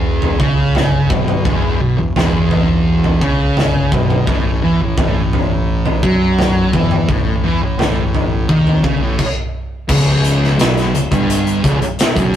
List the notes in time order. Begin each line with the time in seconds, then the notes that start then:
Already playing: E1 E2
0.22 floor tom
0.40 C#2 C#3, kick
0.75 snare, floor tom, mid tom
1.10 B1 B2, kick, mid tom
1.28 mid tom
1.45 E1 E2, kick, floor tom
1.80 B1 B2
1.98 E1 E2
2.16 E1 E2, snare, floor tom, mid tom
2.51 floor tom
3.04 floor tom
3.21 C#2 C#3, kick
3.57 snare, floor tom, mid tom
3.92 B1 B2, kick, mid tom
4.10 mid tom
4.27 A1 A2, kick, floor tom
4.62 E2 E3
4.80 A1 A2
4.98 A1 A2, kick, floor tom, mid tom
5.33 floor tom
5.86 floor tom
6.03 F#2 F#3, kick
6.39 snare, floor tom, mid tom
6.73 E2 E3, kick, mid tom
6.91 mid tom
7.09 A1 A2, kick, floor tom
7.44 E2 E3
7.62 A1 A2
7.79 A1 A2, snare, floor tom, mid tom
8.15 floor tom
8.49 D#2 D#3, kick
8.67 floor tom
8.84 C#2 C#3, kick
9.01 A1 A2
9.19 kick, crash
9.88 C#1 C#2, kick, crash
10.24 closed hi-hat
10.44 snare
10.59 B1 B2, snare, closed hi-hat
10.77 snare, closed hi-hat
10.94 C#1 C#2, closed hi-hat
11.11 G1 G2, kick, closed hi-hat
11.30 closed hi-hat
11.47 closed hi-hat
11.64 C#1 C#2, kick, closed hi-hat
11.81 muted distorted electric guitar stroke, muted fingered electric bass stroke, closed hi-hat
11.99 snare, closed hi-hat
12.15 F#1 F#2, kick, closed hi-hat